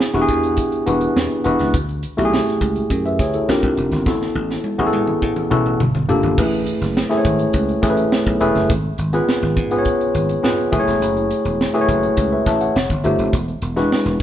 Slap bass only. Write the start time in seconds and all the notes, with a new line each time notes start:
0.14 E1
0.29 E2
0.87 E1
1.16 E2
1.45 E1
1.60 C#2
1.74 D2
2.18 B1
2.61 C#2
2.90 F#2
3.19 D2
3.49 A#1
3.63 C2
3.77 F1
3.92 G1
4.06 A1
4.35 A1
4.79 A1
4.93 A2
5.22 A2
5.51 A1
5.66 A1
5.80 G1
5.94 G1
6.09 F1
6.23 G1
6.38 A1
6.81 F#1
7.25 G#1
7.54 C#2
7.83 A1
8.27 B1
8.41 E1
8.55 F#1
8.70 G#1
8.98 G#1
9.42 G#1
9.57 G#2
10.15 G#1
10.44 G#2
10.73 F#1
10.88 E1
11.01 F#1
11.45 E1
11.89 F#1
12.17 C#2
12.46 A1
12.76 F1
12.90 G1
13.05 G1
13.19 F1
13.33 E1
13.62 E1
14.05 E1